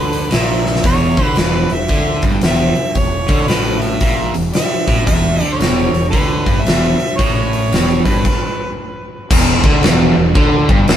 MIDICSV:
0, 0, Header, 1, 7, 480
1, 0, Start_track
1, 0, Tempo, 527704
1, 775, Time_signature, 4, 2, 24, 8
1, 9977, End_track
2, 0, Start_track
2, 0, Title_t, "Harmonica"
2, 0, Program_c, 0, 22
2, 0, Note_on_c, 0, 71, 76
2, 304, Note_on_c, 0, 76, 86
2, 317, Note_off_c, 0, 71, 0
2, 776, Note_off_c, 0, 76, 0
2, 781, Note_on_c, 0, 73, 91
2, 1224, Note_off_c, 0, 73, 0
2, 1268, Note_on_c, 0, 71, 81
2, 1578, Note_on_c, 0, 76, 87
2, 1591, Note_off_c, 0, 71, 0
2, 2048, Note_off_c, 0, 76, 0
2, 2240, Note_on_c, 0, 76, 96
2, 2700, Note_on_c, 0, 73, 93
2, 2714, Note_off_c, 0, 76, 0
2, 3168, Note_on_c, 0, 71, 86
2, 3182, Note_off_c, 0, 73, 0
2, 3468, Note_on_c, 0, 76, 86
2, 3482, Note_off_c, 0, 71, 0
2, 3955, Note_off_c, 0, 76, 0
2, 4133, Note_on_c, 0, 76, 100
2, 4582, Note_off_c, 0, 76, 0
2, 4602, Note_on_c, 0, 76, 105
2, 4930, Note_off_c, 0, 76, 0
2, 4930, Note_on_c, 0, 74, 105
2, 5026, Note_on_c, 0, 72, 65
2, 5040, Note_off_c, 0, 74, 0
2, 5061, Note_on_c, 0, 73, 88
2, 5075, Note_off_c, 0, 72, 0
2, 5543, Note_off_c, 0, 73, 0
2, 5549, Note_on_c, 0, 71, 78
2, 6017, Note_on_c, 0, 76, 87
2, 6031, Note_off_c, 0, 71, 0
2, 6517, Note_on_c, 0, 73, 90
2, 6530, Note_off_c, 0, 76, 0
2, 7311, Note_on_c, 0, 71, 75
2, 7324, Note_off_c, 0, 73, 0
2, 7974, Note_off_c, 0, 71, 0
2, 9977, End_track
3, 0, Start_track
3, 0, Title_t, "Overdriven electric guitar"
3, 0, Program_c, 1, 29
3, 0, Note_on_c, 1, 50, 98
3, 283, Note_off_c, 1, 50, 0
3, 287, Note_on_c, 1, 46, 88
3, 765, Note_off_c, 1, 46, 0
3, 766, Note_on_c, 1, 40, 94
3, 1065, Note_off_c, 1, 40, 0
3, 1070, Note_on_c, 1, 50, 95
3, 1245, Note_off_c, 1, 50, 0
3, 1249, Note_on_c, 1, 40, 88
3, 1547, Note_off_c, 1, 40, 0
3, 1558, Note_on_c, 1, 40, 63
3, 1699, Note_off_c, 1, 40, 0
3, 1731, Note_on_c, 1, 50, 98
3, 2028, Note_off_c, 1, 50, 0
3, 2035, Note_on_c, 1, 43, 83
3, 2208, Note_off_c, 1, 43, 0
3, 2218, Note_on_c, 1, 40, 91
3, 2506, Note_off_c, 1, 40, 0
3, 2689, Note_on_c, 1, 40, 58
3, 2935, Note_off_c, 1, 40, 0
3, 2985, Note_on_c, 1, 50, 95
3, 3163, Note_off_c, 1, 50, 0
3, 3169, Note_on_c, 1, 45, 91
3, 3647, Note_off_c, 1, 45, 0
3, 3652, Note_on_c, 1, 46, 93
3, 3949, Note_off_c, 1, 46, 0
3, 3949, Note_on_c, 1, 40, 66
3, 4096, Note_off_c, 1, 40, 0
3, 4434, Note_on_c, 1, 45, 97
3, 4605, Note_on_c, 1, 40, 101
3, 4608, Note_off_c, 1, 45, 0
3, 4906, Note_off_c, 1, 40, 0
3, 4906, Note_on_c, 1, 50, 94
3, 5084, Note_on_c, 1, 40, 103
3, 5085, Note_off_c, 1, 50, 0
3, 5386, Note_off_c, 1, 40, 0
3, 5396, Note_on_c, 1, 40, 63
3, 5540, Note_off_c, 1, 40, 0
3, 5567, Note_on_c, 1, 50, 102
3, 5868, Note_off_c, 1, 50, 0
3, 5875, Note_on_c, 1, 43, 99
3, 6050, Note_off_c, 1, 43, 0
3, 6056, Note_on_c, 1, 40, 86
3, 6353, Note_off_c, 1, 40, 0
3, 6542, Note_on_c, 1, 45, 94
3, 7016, Note_off_c, 1, 45, 0
3, 7019, Note_on_c, 1, 40, 96
3, 7315, Note_off_c, 1, 40, 0
3, 7331, Note_on_c, 1, 43, 97
3, 7499, Note_off_c, 1, 43, 0
3, 8472, Note_on_c, 1, 40, 98
3, 8761, Note_off_c, 1, 40, 0
3, 8773, Note_on_c, 1, 50, 106
3, 8939, Note_off_c, 1, 50, 0
3, 8951, Note_on_c, 1, 40, 102
3, 9240, Note_off_c, 1, 40, 0
3, 9257, Note_on_c, 1, 40, 71
3, 9391, Note_off_c, 1, 40, 0
3, 9418, Note_on_c, 1, 50, 112
3, 9713, Note_off_c, 1, 50, 0
3, 9727, Note_on_c, 1, 43, 97
3, 9895, Note_off_c, 1, 43, 0
3, 9907, Note_on_c, 1, 40, 106
3, 9977, Note_off_c, 1, 40, 0
3, 9977, End_track
4, 0, Start_track
4, 0, Title_t, "Fingered electric bass"
4, 0, Program_c, 2, 33
4, 0, Note_on_c, 2, 38, 79
4, 259, Note_off_c, 2, 38, 0
4, 294, Note_on_c, 2, 34, 83
4, 740, Note_off_c, 2, 34, 0
4, 764, Note_on_c, 2, 28, 81
4, 1051, Note_off_c, 2, 28, 0
4, 1065, Note_on_c, 2, 38, 80
4, 1235, Note_off_c, 2, 38, 0
4, 1245, Note_on_c, 2, 28, 89
4, 1532, Note_off_c, 2, 28, 0
4, 1550, Note_on_c, 2, 28, 70
4, 1718, Note_off_c, 2, 28, 0
4, 1724, Note_on_c, 2, 38, 82
4, 2012, Note_off_c, 2, 38, 0
4, 2028, Note_on_c, 2, 31, 87
4, 2197, Note_off_c, 2, 31, 0
4, 2208, Note_on_c, 2, 28, 83
4, 2494, Note_off_c, 2, 28, 0
4, 2688, Note_on_c, 2, 28, 72
4, 2974, Note_off_c, 2, 28, 0
4, 2992, Note_on_c, 2, 38, 84
4, 3159, Note_off_c, 2, 38, 0
4, 3167, Note_on_c, 2, 33, 87
4, 3617, Note_off_c, 2, 33, 0
4, 3649, Note_on_c, 2, 34, 87
4, 3935, Note_off_c, 2, 34, 0
4, 3966, Note_on_c, 2, 28, 75
4, 4127, Note_off_c, 2, 28, 0
4, 4440, Note_on_c, 2, 33, 94
4, 4604, Note_off_c, 2, 33, 0
4, 4612, Note_on_c, 2, 28, 86
4, 4898, Note_off_c, 2, 28, 0
4, 4917, Note_on_c, 2, 38, 84
4, 5083, Note_off_c, 2, 38, 0
4, 5098, Note_on_c, 2, 28, 93
4, 5381, Note_off_c, 2, 28, 0
4, 5393, Note_on_c, 2, 28, 79
4, 5561, Note_off_c, 2, 28, 0
4, 5580, Note_on_c, 2, 38, 83
4, 5862, Note_off_c, 2, 38, 0
4, 5881, Note_on_c, 2, 31, 85
4, 6046, Note_off_c, 2, 31, 0
4, 6054, Note_on_c, 2, 28, 81
4, 6340, Note_off_c, 2, 28, 0
4, 6542, Note_on_c, 2, 33, 85
4, 6988, Note_off_c, 2, 33, 0
4, 7018, Note_on_c, 2, 28, 86
4, 7302, Note_off_c, 2, 28, 0
4, 7329, Note_on_c, 2, 31, 89
4, 7491, Note_off_c, 2, 31, 0
4, 8467, Note_on_c, 2, 28, 95
4, 8747, Note_off_c, 2, 28, 0
4, 8764, Note_on_c, 2, 38, 94
4, 8928, Note_off_c, 2, 38, 0
4, 8938, Note_on_c, 2, 28, 98
4, 9221, Note_off_c, 2, 28, 0
4, 9244, Note_on_c, 2, 28, 91
4, 9407, Note_off_c, 2, 28, 0
4, 9419, Note_on_c, 2, 38, 89
4, 9701, Note_off_c, 2, 38, 0
4, 9726, Note_on_c, 2, 31, 95
4, 9888, Note_off_c, 2, 31, 0
4, 9903, Note_on_c, 2, 28, 89
4, 9977, Note_off_c, 2, 28, 0
4, 9977, End_track
5, 0, Start_track
5, 0, Title_t, "Muted fingered electric bass strokes"
5, 2517, Note_on_c, 9, 29, 40
5, 2607, Note_off_c, 9, 29, 0
5, 4142, Note_on_c, 9, 29, 39
5, 4233, Note_off_c, 9, 29, 0
5, 6362, Note_on_c, 9, 29, 39
5, 6453, Note_off_c, 9, 29, 0
5, 9977, End_track
6, 0, Start_track
6, 0, Title_t, "Muted overdriven electric guitar strokes"
6, 2517, Note_on_c, 9, 29, 56
6, 2608, Note_off_c, 9, 29, 0
6, 4133, Note_on_c, 9, 29, 50
6, 4224, Note_off_c, 9, 29, 0
6, 6366, Note_on_c, 9, 29, 53
6, 6457, Note_off_c, 9, 29, 0
6, 9977, End_track
7, 0, Start_track
7, 0, Title_t, "Drums"
7, 118, Note_on_c, 9, 46, 50
7, 208, Note_off_c, 9, 46, 0
7, 280, Note_on_c, 9, 46, 71
7, 295, Note_on_c, 9, 38, 106
7, 371, Note_off_c, 9, 46, 0
7, 386, Note_off_c, 9, 38, 0
7, 599, Note_on_c, 9, 38, 52
7, 687, Note_off_c, 9, 38, 0
7, 687, Note_on_c, 9, 38, 77
7, 760, Note_on_c, 9, 46, 67
7, 764, Note_on_c, 9, 36, 105
7, 778, Note_off_c, 9, 38, 0
7, 851, Note_off_c, 9, 46, 0
7, 855, Note_off_c, 9, 36, 0
7, 1064, Note_on_c, 9, 46, 42
7, 1067, Note_on_c, 9, 36, 90
7, 1154, Note_off_c, 9, 46, 0
7, 1158, Note_off_c, 9, 36, 0
7, 1234, Note_on_c, 9, 46, 63
7, 1248, Note_on_c, 9, 38, 114
7, 1325, Note_off_c, 9, 46, 0
7, 1339, Note_off_c, 9, 38, 0
7, 1543, Note_on_c, 9, 46, 44
7, 1634, Note_off_c, 9, 46, 0
7, 1713, Note_on_c, 9, 46, 54
7, 1722, Note_on_c, 9, 36, 91
7, 1804, Note_off_c, 9, 46, 0
7, 1813, Note_off_c, 9, 36, 0
7, 2020, Note_on_c, 9, 46, 48
7, 2027, Note_on_c, 9, 36, 89
7, 2111, Note_off_c, 9, 46, 0
7, 2118, Note_off_c, 9, 36, 0
7, 2196, Note_on_c, 9, 46, 67
7, 2210, Note_on_c, 9, 38, 107
7, 2286, Note_off_c, 9, 46, 0
7, 2301, Note_off_c, 9, 38, 0
7, 2504, Note_on_c, 9, 46, 43
7, 2595, Note_off_c, 9, 46, 0
7, 2684, Note_on_c, 9, 46, 64
7, 2688, Note_on_c, 9, 36, 78
7, 2775, Note_off_c, 9, 46, 0
7, 2779, Note_off_c, 9, 36, 0
7, 2985, Note_on_c, 9, 46, 49
7, 2992, Note_on_c, 9, 36, 100
7, 3076, Note_off_c, 9, 46, 0
7, 3083, Note_off_c, 9, 36, 0
7, 3167, Note_on_c, 9, 46, 68
7, 3182, Note_on_c, 9, 38, 105
7, 3258, Note_off_c, 9, 46, 0
7, 3273, Note_off_c, 9, 38, 0
7, 3472, Note_on_c, 9, 46, 50
7, 3563, Note_off_c, 9, 46, 0
7, 3643, Note_on_c, 9, 46, 61
7, 3648, Note_on_c, 9, 36, 89
7, 3734, Note_off_c, 9, 46, 0
7, 3739, Note_off_c, 9, 36, 0
7, 3950, Note_on_c, 9, 46, 50
7, 4041, Note_off_c, 9, 46, 0
7, 4125, Note_on_c, 9, 46, 67
7, 4140, Note_on_c, 9, 38, 107
7, 4216, Note_off_c, 9, 46, 0
7, 4231, Note_off_c, 9, 38, 0
7, 4435, Note_on_c, 9, 46, 50
7, 4436, Note_on_c, 9, 36, 93
7, 4526, Note_off_c, 9, 46, 0
7, 4527, Note_off_c, 9, 36, 0
7, 4613, Note_on_c, 9, 36, 98
7, 4619, Note_on_c, 9, 46, 66
7, 4704, Note_off_c, 9, 36, 0
7, 4710, Note_off_c, 9, 46, 0
7, 4918, Note_on_c, 9, 46, 46
7, 5009, Note_off_c, 9, 46, 0
7, 5099, Note_on_c, 9, 46, 65
7, 5114, Note_on_c, 9, 38, 106
7, 5190, Note_off_c, 9, 46, 0
7, 5204, Note_off_c, 9, 38, 0
7, 5408, Note_on_c, 9, 46, 47
7, 5499, Note_off_c, 9, 46, 0
7, 5576, Note_on_c, 9, 36, 94
7, 5581, Note_on_c, 9, 46, 57
7, 5667, Note_off_c, 9, 36, 0
7, 5672, Note_off_c, 9, 46, 0
7, 5880, Note_on_c, 9, 36, 90
7, 5882, Note_on_c, 9, 46, 44
7, 5971, Note_off_c, 9, 36, 0
7, 5973, Note_off_c, 9, 46, 0
7, 6063, Note_on_c, 9, 46, 64
7, 6077, Note_on_c, 9, 38, 110
7, 6154, Note_off_c, 9, 46, 0
7, 6168, Note_off_c, 9, 38, 0
7, 6364, Note_on_c, 9, 46, 41
7, 6455, Note_off_c, 9, 46, 0
7, 6540, Note_on_c, 9, 36, 104
7, 6545, Note_on_c, 9, 46, 60
7, 6631, Note_off_c, 9, 36, 0
7, 6636, Note_off_c, 9, 46, 0
7, 6850, Note_on_c, 9, 46, 47
7, 6941, Note_off_c, 9, 46, 0
7, 7027, Note_on_c, 9, 46, 67
7, 7041, Note_on_c, 9, 38, 110
7, 7118, Note_off_c, 9, 46, 0
7, 7132, Note_off_c, 9, 38, 0
7, 7327, Note_on_c, 9, 36, 90
7, 7334, Note_on_c, 9, 46, 51
7, 7418, Note_off_c, 9, 36, 0
7, 7425, Note_off_c, 9, 46, 0
7, 7502, Note_on_c, 9, 49, 76
7, 7504, Note_on_c, 9, 36, 88
7, 7593, Note_off_c, 9, 49, 0
7, 7595, Note_off_c, 9, 36, 0
7, 8465, Note_on_c, 9, 36, 110
7, 8468, Note_on_c, 9, 49, 121
7, 8468, Note_on_c, 9, 57, 62
7, 8556, Note_off_c, 9, 36, 0
7, 8559, Note_off_c, 9, 49, 0
7, 8559, Note_off_c, 9, 57, 0
7, 8767, Note_on_c, 9, 36, 103
7, 8858, Note_off_c, 9, 36, 0
7, 8938, Note_on_c, 9, 57, 67
7, 8953, Note_on_c, 9, 38, 121
7, 9029, Note_off_c, 9, 57, 0
7, 9044, Note_off_c, 9, 38, 0
7, 9414, Note_on_c, 9, 57, 54
7, 9418, Note_on_c, 9, 36, 103
7, 9505, Note_off_c, 9, 57, 0
7, 9509, Note_off_c, 9, 36, 0
7, 9724, Note_on_c, 9, 36, 97
7, 9815, Note_off_c, 9, 36, 0
7, 9892, Note_on_c, 9, 57, 59
7, 9907, Note_on_c, 9, 38, 123
7, 9977, Note_off_c, 9, 38, 0
7, 9977, Note_off_c, 9, 57, 0
7, 9977, End_track
0, 0, End_of_file